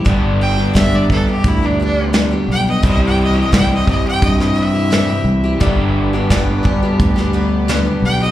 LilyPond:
<<
  \new Staff \with { instrumentName = "Fiddle" } { \time 4/4 \key g \mixolydian \tempo 4 = 86 r8 g''8 e''16 d''16 a'16 g'16 e'16 d'16 d'8 r8 g''16 ees''16 | ees''16 g''16 ees''16 ees''16 g''16 ees''16 ees''16 g''16 ees''16 ees''16 e''4 r8 | r2. r8 g''16 ees''16 | }
  \new Staff \with { instrumentName = "String section" } { \time 4/4 \key g \mixolydian r1 | r1 | <b d' g' b'>1 | }
  \new Staff \with { instrumentName = "Steel-string acoustic guitar" } { \time 4/4 \key g \mixolydian <g, d g b d' g'>8. <g b d' g'>16 <g, d g b d' g'>8 <g b d' g'>16 <g b d' g'>8 <g b d' g'>16 <g b d' g'>8 <g, d g b d' g'>16 <g b d' g'>8 <g b d' g'>16 | <c g c' e' g'>8. <c' e' g'>16 <c g c' e' g'>8 <g c' e' g'>16 <c' e' g'>8 <c' e' g'>16 <g c' e' g'>16 <c' e' g'>16 <c g c' e' g'>16 <c' e' g'>8 <c' e' g'>16 | <g, d g b d' g'>8. <g b d' g'>16 <g, d g b d' g'>8 <g b d' g'>16 <g b d' g'>8 <g b d' g'>16 <g b d' g'>8 <g, d g b d' g'>16 <g b d' g'>8 <g b d' g'>16 | }
  \new Staff \with { instrumentName = "Overdriven electric guitar" } { \clef bass \time 4/4 \key g \mixolydian <g, d g b d' g'>1 | <c e g e' g'>1 | <g, d g b d' g'>1 | }
  \new Staff \with { instrumentName = "Fingered electric bass" } { \clef bass \time 4/4 \key g \mixolydian g,,4 g,,8 r8 d,4. b,,8 | c,4 c,8 r8 g,4. c,8 | g,,4 g,,8 r8 d,4. b,,8 | }
  \new DrumStaff \with { instrumentName = "Drums" } \drummode { \time 4/4 <hh bd>4 <hh bd sn>8 bd8 <hh bd>4 <hh sn>4 | <hh bd>4 <hh bd sn>8 bd8 <hh bd>16 sn8. <hh sn>4 | <hh bd>4 <hh bd sn>8 bd8 <hh bd>16 sn8. <hh sn>4 | }
>>